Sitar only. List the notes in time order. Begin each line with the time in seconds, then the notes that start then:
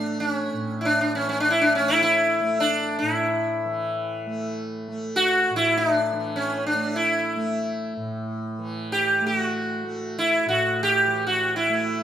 Already playing: D4
0.20 D4
0.31 C#4
0.81 E4
0.85 D4
1.01 D4
1.15 C#4
1.29 C#4
1.40 D4
1.50 E4
1.61 D4
1.75 C#4
1.88 E4
2.03 E4
2.60 D4
2.99 E4
5.16 F#4
5.56 E4
5.77 D4
6.36 C#4
6.66 D4
6.96 E4
8.92 G4
9.27 G4
9.39 F#4
10.19 E4
10.49 F#4
10.83 G4
11.27 F#4
11.56 E4